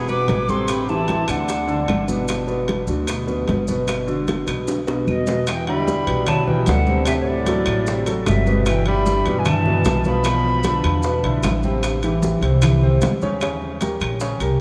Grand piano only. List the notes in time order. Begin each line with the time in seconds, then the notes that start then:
0.08 B2 B3 B4
0.49 C3 C4 C5
0.69 C3 C4 C5
0.89 E3 E4 G4
1.28 D3 D4 D5
1.67 D3 D4 D5
2.08 B2 B3 B4
2.47 B2 B3 B4
2.88 D3 D4 F#4
3.08 B2 B3 B4
3.27 B2 B3 B4
3.68 B2 B3 B4
3.87 B2 B3 B4
4.07 D3 D4 F#4
4.47 B2 B3 B4
4.87 B2 B3 B4
5.28 B2 B3 B4
5.68 D3 D4 E4
6.07 B2 B3 B4
6.27 D3 D4 E4
6.47 B2 B3 B4
6.88 C3 C4 C5
7.08 C3 C4 C5
7.47 F#3 F#4 A4
7.88 C3 C4 C5
8.07 F#3 F#4 A4
8.47 B2 B3 B4
8.86 D3 D4 E4
9.26 B2 B3 B4
9.45 D3 D4 E4
9.67 B2 B3 B4
10.06 B2 B3 B4
10.26 B2 B3 B4
10.65 D3 D4 F4
11.05 B2 B3 B4
11.24 D3 D4 E4
11.64 C3 C4 C5
12.04 E3 E4 G4
12.43 C3 C4 C5
12.63 E3 E4 G4
12.82 C3 C4 C5
13.22 C#3 C#4 C#5
13.42 C#3 C#4 C#5
13.81 G3 G4 A#4
14.21 C#3 C#4 C#5
14.41 G3 G4 A#4